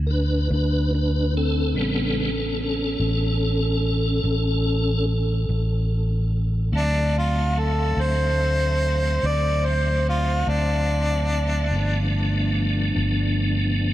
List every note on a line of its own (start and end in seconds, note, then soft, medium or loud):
0.00 0.47 D2 loud
0.07 0.48 D4 loud
0.07 0.11 A#4 medium
0.11 0.50 B4 medium
0.51 1.75 D2 loud
0.51 0.91 D4 medium
0.51 0.93 B4 loud
0.95 1.32 D4 medium
0.95 1.35 B4 medium
1.37 1.74 C4 medium
1.37 1.76 A4 loud
1.75 2.95 A1 loud
1.75 2.30 C#3 medium
1.75 2.31 G3 soft
1.75 2.31 B3 medium
1.75 2.15 C#4 medium
1.79 2.18 A4 medium
2.20 2.57 C#4 medium
2.20 2.59 A4 medium
2.63 5.05 C#4 loud
2.63 5.06 A4 loud
3.00 4.20 A1 medium
4.24 5.44 A1 loud
5.49 6.69 A1 medium
6.72 7.93 D2 loud
6.72 11.68 F#3 medium
6.72 11.68 A3 medium
6.72 11.68 C4 medium
6.72 11.68 E5 medium
6.77 7.15 D4 loud
7.18 7.61 F4 medium
7.59 8.03 A4 medium
7.97 9.18 D2 medium
8.01 9.28 C5 medium
9.23 10.43 D2 medium
9.23 9.68 D5 medium
9.66 10.05 C5 medium
10.09 10.50 F4 medium
10.47 11.73 D2 medium
10.47 12.10 D4 medium
11.71 12.92 G1 loud
11.71 13.94 F3 medium
11.71 13.94 A3 medium
11.71 13.94 B3 medium
11.71 13.94 D4 medium
12.96 13.94 G1 medium